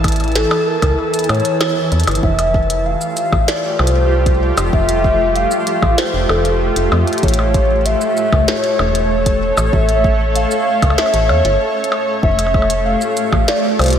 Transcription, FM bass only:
0.00 0.45 A1 loud
0.82 0.94 C#2 medium
1.29 1.41 A2 medium
1.92 2.04 E2 medium
2.07 2.19 G1 medium
2.23 2.95 F1 loud
3.32 3.44 A1 medium
3.79 4.51 C2 loud
4.57 4.69 F1 medium
4.73 5.45 F1 loud
5.82 5.94 A1 medium
6.14 6.26 F1 medium
6.29 6.70 F1 loud
6.76 6.88 F1 medium
6.92 7.04 F2 loud
7.23 7.95 A1 loud
8.32 8.44 C#2 medium
8.79 9.51 E1 loud
9.57 9.69 A1 medium
9.73 10.45 A1 loud
10.82 10.94 C#2 medium
11.14 11.31 A1 medium
11.29 11.41 E2 medium
11.45 11.57 G1 loud
12.23 12.95 F1 loud
13.32 13.44 A1 medium
13.79 13.99 C2 loud

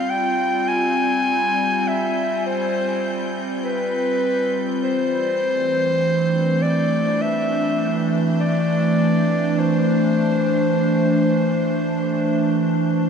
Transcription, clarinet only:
0.00 0.11 F5 medium
0.10 0.70 G5 medium
0.68 1.90 G#5 medium
1.88 2.46 E5 medium
2.47 3.34 C5 medium
3.65 4.79 B4 medium
4.84 6.64 C5 loud
6.62 7.23 D5 medium
7.22 8.13 E5 medium
8.40 9.61 D5 medium
9.60 13.10 C5 medium

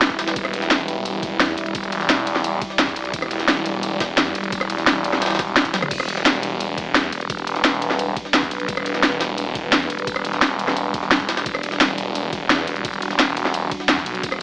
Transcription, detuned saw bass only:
0.00 0.35 E1 loud
0.36 1.21 E1 loud
1.23 1.39 E1 loud
1.40 1.56 E2 loud
1.58 2.08 E1 loud
2.10 2.60 E1 loud
2.79 2.95 E2 loud
2.96 3.12 B1 loud
3.14 3.99 E1 loud
4.00 4.16 E1 loud
4.18 4.34 E2 loud
4.35 4.86 E1 loud
4.87 5.72 E1 medium
5.74 5.90 E1 loud
5.91 6.76 E1 loud
6.78 6.94 E1 loud
6.95 7.11 E2 loud
7.12 7.63 E1 loud
7.65 8.15 E1 loud
8.34 8.50 E2 loud
8.51 8.67 B1 medium
8.69 9.54 E1 loud
9.55 9.71 E1 loud
9.73 9.89 E2 loud
9.90 10.41 E1 loud
10.42 11.45 E1 loud
11.46 12.31 E1 loud
12.33 12.49 E1 loud
12.50 12.66 E2 loud
12.67 13.18 E1 loud
13.19 13.70 E1 loud
13.89 14.05 E2 medium
14.06 14.22 B1 loud
14.23 14.42 E1 loud

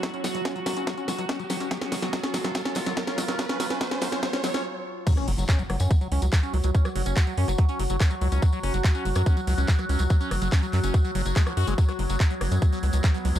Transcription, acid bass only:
0.03 0.10 F#3 medium
0.14 0.24 C#4 medium
0.24 0.28 F#3 medium
0.35 0.41 F#3 medium
0.45 0.55 C#4 medium
0.56 0.60 F#3 medium
0.66 0.73 F#3 medium
0.77 0.85 C#4 medium
0.87 0.94 F#3 medium
0.98 1.08 C#4 medium
1.08 1.12 F#3 medium
1.19 1.25 F#3 medium
1.29 1.39 C#4 medium
1.40 1.44 F#3 medium
1.50 1.57 F#3 medium
1.61 1.69 C#4 medium
1.71 1.78 F#3 medium
1.82 1.91 C#4 medium
1.92 1.96 F#3 medium
2.02 2.09 F#3 medium
2.13 2.20 F#3 medium
2.23 2.33 C#4 medium
2.34 2.38 F#3 medium
2.44 2.51 F#3 medium
2.55 2.62 F#3 medium
2.65 2.75 C#4 medium
2.76 2.80 F#3 medium
2.86 2.93 F#3 medium
2.97 3.04 F#3 medium
3.07 3.17 C#4 medium
3.18 3.22 F#3 medium
3.28 3.35 F#3 medium
3.39 3.46 F#3 medium
3.49 3.58 C#4 medium
3.60 3.67 F#3 medium
3.70 3.79 C#4 medium
3.81 3.88 F#3 medium
3.91 4.00 C#4 medium
4.02 4.09 F#3 medium
4.12 4.21 C#4 medium
4.23 4.30 F#3 medium
4.33 4.42 C#4 medium
4.44 4.51 F#3 medium
4.54 4.63 C#4 medium
5.07 5.13 F#3 medium
5.17 5.27 C#4 medium
5.28 5.32 F#3 medium
5.38 5.45 F#3 medium
5.49 5.59 C#4 medium
5.59 5.63 F#3 medium
5.70 5.76 F#3 medium
5.80 5.90 C#4 medium
5.91 5.95 F#3 medium
6.01 6.08 F#3 medium
6.12 6.22 C#4 medium
6.22 6.26 F#3 medium
6.33 6.39 F#3 medium
6.43 6.53 C#4 medium
6.54 6.58 F#3 medium
6.64 6.71 F#3 medium
6.75 6.85 C#4 medium
6.85 6.89 F#3 medium
6.96 7.02 F#3 medium
7.06 7.16 C#4 medium
7.17 7.21 F#3 medium
7.27 7.34 F#3 medium
7.38 7.47 C#4 medium
7.48 7.52 F#3 medium
7.58 7.65 F#3 medium
7.69 7.79 C#4 medium
7.79 7.83 F#3 medium
7.90 7.97 F#3 medium
8.00 8.10 C#4 medium
8.11 8.15 F#3 medium
8.21 8.28 F#3 medium
8.32 8.42 C#4 medium
8.42 8.46 F#3 medium
8.53 8.60 F#3 medium
8.63 8.73 C#4 medium
8.74 8.78 F#3 medium
8.84 8.91 F#3 medium
8.95 9.05 C#4 medium
9.05 9.09 F#3 medium
9.16 9.23 F#3 medium
9.26 9.36 C#4 medium
9.37 9.41 F#3 medium
9.47 9.54 F#3 medium
9.58 9.68 C#4 medium
9.68 9.72 F#3 medium
9.79 9.85 F#3 medium
9.89 9.99 C#4 medium
10.00 10.04 F#3 medium
10.10 10.17 F#3 medium
10.21 10.31 C#4 medium
10.31 10.35 F#3 medium
10.42 10.48 F#3 medium
10.52 10.62 C#4 medium
10.63 10.67 F#3 medium
10.73 10.80 F#3 medium
10.84 10.94 C#4 medium
10.94 10.98 F#3 medium
11.05 11.11 F#3 medium
11.15 11.22 F#3 loud
11.26 11.36 F#3 medium
11.36 11.43 G#3 loud
11.47 11.53 F3 medium
11.57 11.67 F#4 loud
11.68 11.74 G#3 loud
11.78 11.85 F#3 medium
11.89 11.93 F#3 medium
11.99 12.03 F#3 medium
12.10 12.16 F#3 medium
12.20 12.24 F#3 medium
12.30 12.35 F#3 medium
12.41 12.48 F#3 medium
12.51 12.56 F#3 medium
12.62 12.66 F#3 medium
12.72 12.79 F#3 medium
12.83 12.87 F#3 medium
12.93 12.97 F#3 medium
13.04 13.11 F#3 medium
13.14 13.18 F#3 medium
13.25 13.29 F#3 medium
13.35 13.39 F#3 medium

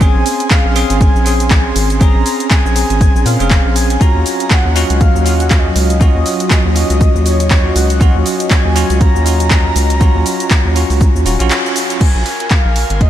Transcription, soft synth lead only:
0.01 0.47 G#5 loud
0.51 1.02 F5 loud
1.01 1.76 G#5 loud
2.01 2.47 A#5 loud
2.51 3.27 G#5 loud
3.26 3.75 F5 loud
3.76 4.02 G#5 loud
4.01 4.52 A#5 loud
4.51 5.00 F#5 loud
5.01 5.43 F5 medium
5.41 5.50 F#5 medium
5.49 5.60 F5 medium
5.59 5.70 D#5 medium
5.68 5.76 F5 medium
6.01 6.47 D#5 loud
6.51 7.22 D#5 loud
7.26 7.77 C#5 loud
7.76 8.26 F#5 loud
8.51 8.97 G#5 loud
9.01 11.47 A#5 loud
12.01 12.52 G#5 loud
12.51 13.00 F5 loud
13.01 13.10 D#5 loud

